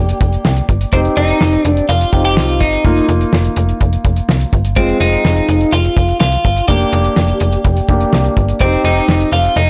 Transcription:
0.00 0.14 F1 loud
0.00 0.89 A#3 medium
0.00 0.89 D4 medium
0.00 0.65 G4 medium
0.00 0.89 G4 medium
0.09 closed hi-hat medium
0.21 0.38 F1 loud
0.21 kick medium
0.21 closed hi-hat medium
0.32 closed hi-hat soft
0.45 0.62 C2 loud
0.45 snare loud
0.57 closed hi-hat soft
0.69 0.86 G1 medium
0.69 kick medium
0.69 closed hi-hat medium
0.81 closed hi-hat medium
0.93 1.09 F1 loud
0.93 2.10 C4 medium
0.93 1.00 C4 medium
0.93 2.10 D#4 medium
0.93 2.10 G4 medium
0.93 kick loud
0.93 closed hi-hat medium
1.05 closed hi-hat soft
1.17 1.34 F1 medium
1.17 1.64 D#4 medium
1.17 closed hi-hat medium
1.29 closed hi-hat soft
1.41 1.58 F1 loud
1.41 snare loud
1.53 closed hi-hat soft
1.64 1.82 F1 loud
1.64 1.85 D4 medium
1.64 closed hi-hat medium
1.77 closed hi-hat soft
1.89 2.06 F1 loud
1.89 2.25 F4 medium
1.89 closed hi-hat medium
2.01 closed hi-hat medium
2.12 2.38 F1 medium
2.12 2.85 C4 soft
2.12 2.83 D#4 soft
2.12 2.85 G4 medium
2.12 kick loud
2.12 closed hi-hat medium
2.25 2.37 G4 loud
2.25 closed hi-hat soft
2.37 2.62 C2 loud
2.37 2.61 F4 medium
2.37 snare loud
2.49 closed hi-hat soft
2.61 2.78 G1 medium
2.61 3.05 D#4 medium
2.61 kick medium
2.61 closed hi-hat medium
2.73 closed hi-hat medium
2.85 3.01 F1 loud
2.85 4.73 A#3 medium
2.85 4.73 D#4 medium
2.85 4.73 F4 medium
2.85 kick loud
2.85 closed hi-hat medium
2.97 closed hi-hat soft
3.09 3.25 F1 loud
3.09 closed hi-hat medium
3.21 closed hi-hat soft
3.33 3.50 F1 loud
3.33 snare loud
3.45 closed hi-hat soft
3.56 3.73 F1 medium
3.56 closed hi-hat medium
3.69 closed hi-hat soft
3.81 3.98 F1 loud
3.81 kick medium
3.81 closed hi-hat medium
3.93 closed hi-hat medium
4.05 4.21 F1 loud
4.05 kick loud
4.05 closed hi-hat medium
4.16 closed hi-hat soft
4.29 4.45 C2 medium
4.29 snare loud
4.41 closed hi-hat soft
4.53 4.78 G1 medium
4.53 kick medium
4.53 closed hi-hat medium
4.65 closed hi-hat medium
4.76 4.93 F1 loud
4.76 6.65 G#3 medium
4.76 5.00 C4 medium
4.76 6.65 C4 medium
4.76 6.65 F4 medium
4.76 kick loud
4.76 closed hi-hat medium
4.89 closed hi-hat soft
5.00 5.17 F1 medium
5.00 5.75 D#4 medium
5.00 closed hi-hat medium
5.13 closed hi-hat soft
5.25 5.41 F1 loud
5.25 snare loud
5.37 closed hi-hat soft
5.49 5.65 F1 medium
5.49 closed hi-hat medium
5.61 closed hi-hat soft
5.72 5.89 F1 loud
5.72 6.19 F4 medium
5.72 closed hi-hat medium
5.85 closed hi-hat soft
5.97 6.13 F1 loud
5.97 kick medium
5.97 closed hi-hat medium
6.08 closed hi-hat soft
6.20 6.37 C2 loud
6.20 6.68 F4 medium
6.20 snare loud
6.32 closed hi-hat soft
6.45 6.61 G1 medium
6.45 kick medium
6.45 closed hi-hat medium
6.56 closed hi-hat medium
6.68 6.85 F1 loud
6.68 7.86 A#3 medium
6.68 7.86 D4 medium
6.68 8.32 G4 medium
6.68 7.86 G4 medium
6.68 kick loud
6.68 closed hi-hat medium
6.81 closed hi-hat soft
6.93 7.09 F1 loud
6.93 closed hi-hat medium
7.05 closed hi-hat soft
7.16 7.34 F1 loud
7.16 snare loud
7.28 closed hi-hat medium
7.40 7.58 F1 medium
7.40 closed hi-hat medium
7.52 closed hi-hat soft
7.64 7.81 F1 loud
7.64 kick medium
7.64 closed hi-hat medium
7.77 closed hi-hat medium
7.89 8.05 F1 loud
7.89 8.61 A#3 medium
7.89 8.61 D4 medium
7.89 8.59 G4 medium
7.89 kick medium
7.89 closed hi-hat medium
8.00 closed hi-hat soft
8.13 8.29 C2 medium
8.13 snare loud
8.24 closed hi-hat soft
8.37 8.53 G1 medium
8.37 kick medium
8.37 closed hi-hat medium
8.48 closed hi-hat medium
8.60 8.77 F1 loud
8.60 9.70 C4 medium
8.60 8.84 C4 medium
8.60 9.70 D#4 medium
8.60 9.70 G4 medium
8.60 kick loud
8.60 closed hi-hat medium
8.73 closed hi-hat soft
8.84 9.01 F1 medium
8.84 9.29 D#4 medium
8.84 closed hi-hat medium
8.97 closed hi-hat soft
9.08 9.25 F1 loud
9.08 snare loud
9.21 closed hi-hat soft
9.32 9.49 F1 loud
9.32 9.55 F4 medium
9.32 closed hi-hat medium
9.45 closed hi-hat soft
9.56 9.70 F1 loud
9.56 9.70 D#4 medium
9.56 closed hi-hat medium

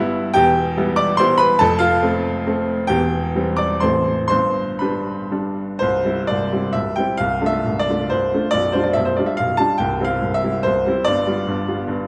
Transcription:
0.00 0.32 G1 medium
0.00 0.32 G2 medium
0.00 0.32 G3 medium
0.00 0.33 B3 medium
0.00 0.33 E4 medium
0.00 0.35 E5 loud
0.34 1.57 E1 medium
0.34 1.57 E2 medium
0.34 0.95 G4 medium
0.34 0.98 G5 loud
0.77 1.16 G3 medium
0.77 1.16 B3 medium
0.77 1.16 E4 medium
0.96 1.18 D5 medium
0.96 1.19 D6 loud
1.17 1.57 G3 medium
1.17 1.57 B3 medium
1.17 1.57 E4 medium
1.17 1.39 C5 medium
1.17 1.39 C6 loud
1.38 1.59 B4 medium
1.38 1.60 B5 loud
1.59 2.86 F1 medium
1.59 2.86 F2 medium
1.59 1.80 A4 loud
1.59 1.81 A5 loud
1.79 2.85 F4 medium
1.79 2.88 F5 loud
2.03 2.43 A3 medium
2.03 2.43 C4 medium
2.47 2.86 A3 medium
2.47 2.86 C4 medium
2.87 3.81 E1 medium
2.87 3.81 E2 medium
2.87 3.56 G4 medium
2.87 3.59 G5 loud
3.35 3.79 E3 soft
3.35 3.79 G3 medium
3.35 3.80 C4 medium
3.57 3.81 D5 medium
3.57 3.82 D6 medium
3.80 4.29 A0 medium
3.80 4.29 A1 medium
3.80 4.26 E3 soft
3.80 4.26 A3 soft
3.80 4.27 C4 soft
3.80 4.26 C5 medium
3.80 4.26 C6 medium
4.28 5.77 G1 medium
4.28 5.77 G2 medium
4.28 4.77 C5 medium
4.28 4.80 C6 loud
4.79 5.28 G3 soft
4.79 5.28 D4 soft
4.79 5.28 B4 soft
4.79 5.31 B5 medium
5.31 5.77 G3 soft
5.31 5.77 D4 soft
5.79 6.04 C1 medium
5.79 6.04 C2 medium
5.79 6.27 C5 medium
6.05 6.26 G3 soft
6.05 6.26 C4 soft
6.05 6.27 E4 soft
6.27 6.52 C1 medium
6.27 6.52 C2 soft
6.27 6.74 D5 medium
6.52 6.72 G3 soft
6.52 6.73 C4 soft
6.52 6.73 E4 soft
6.73 6.96 C1 soft
6.73 6.96 C2 soft
6.73 6.96 E5 medium
6.96 7.17 G3 soft
6.96 7.17 C4 soft
6.96 7.17 E4 soft
6.96 7.18 G5 medium
7.17 7.40 C1 soft
7.17 7.41 C2 medium
7.17 7.48 F5 loud
7.41 7.62 A3 soft
7.41 7.62 D4 soft
7.41 7.63 F4 soft
7.46 7.79 E5 medium
7.65 7.88 C1 soft
7.65 7.88 C2 soft
7.79 8.10 D5 medium
7.89 8.09 A3 soft
7.89 8.09 D4 soft
7.89 8.09 F4 soft
8.10 8.32 C1 soft
8.10 8.32 C2 medium
8.10 8.52 C5 medium
8.34 8.51 A3 soft
8.34 8.52 D4 soft
8.34 8.52 F4 soft
8.51 8.73 B0 medium
8.51 8.73 B1 medium
8.51 8.73 D5 loud
8.72 8.95 G3 soft
8.72 8.95 D4 soft
8.72 8.95 F4 soft
8.72 8.84 C5 medium
8.84 8.96 D5 medium
8.93 9.18 B0 medium
8.93 9.18 B1 medium
8.93 9.06 E5 medium
9.05 9.17 C5 medium
9.16 9.37 G3 soft
9.16 9.38 D4 soft
9.16 9.38 F4 soft
9.16 9.28 D5 medium
9.26 9.38 E5 medium
9.37 9.60 B0 soft
9.37 9.60 B1 soft
9.37 9.59 F5 medium
9.57 9.78 G3 soft
9.57 9.78 D4 soft
9.57 9.78 F4 soft
9.57 9.79 A5 loud
9.78 10.00 C1 medium
9.78 10.00 C2 medium
9.78 10.06 G5 medium
10.00 10.20 G3 soft
10.00 10.20 C4 soft
10.00 10.20 E4 soft
10.05 10.35 F5 medium
10.22 10.43 C1 medium
10.22 10.43 C2 soft
10.34 10.64 E5 medium
10.44 10.63 G3 soft
10.44 10.64 C4 soft
10.44 10.64 E4 soft
10.63 10.86 C1 medium
10.63 10.86 C2 medium
10.63 11.05 C5 medium
10.87 11.04 G3 soft
10.87 11.05 C4 medium
10.87 11.05 E4 soft
11.04 11.25 G1 medium
11.04 11.25 G2 medium
11.04 12.07 D5 loud
11.27 11.44 G3 soft
11.27 11.45 B3 soft
11.27 11.45 F4 soft
11.47 11.66 G1 medium
11.47 11.66 G2 medium
11.68 11.85 G3 soft
11.68 11.86 B3 soft
11.68 11.86 F4 soft
11.88 12.07 G1 medium
11.88 12.06 G2 medium

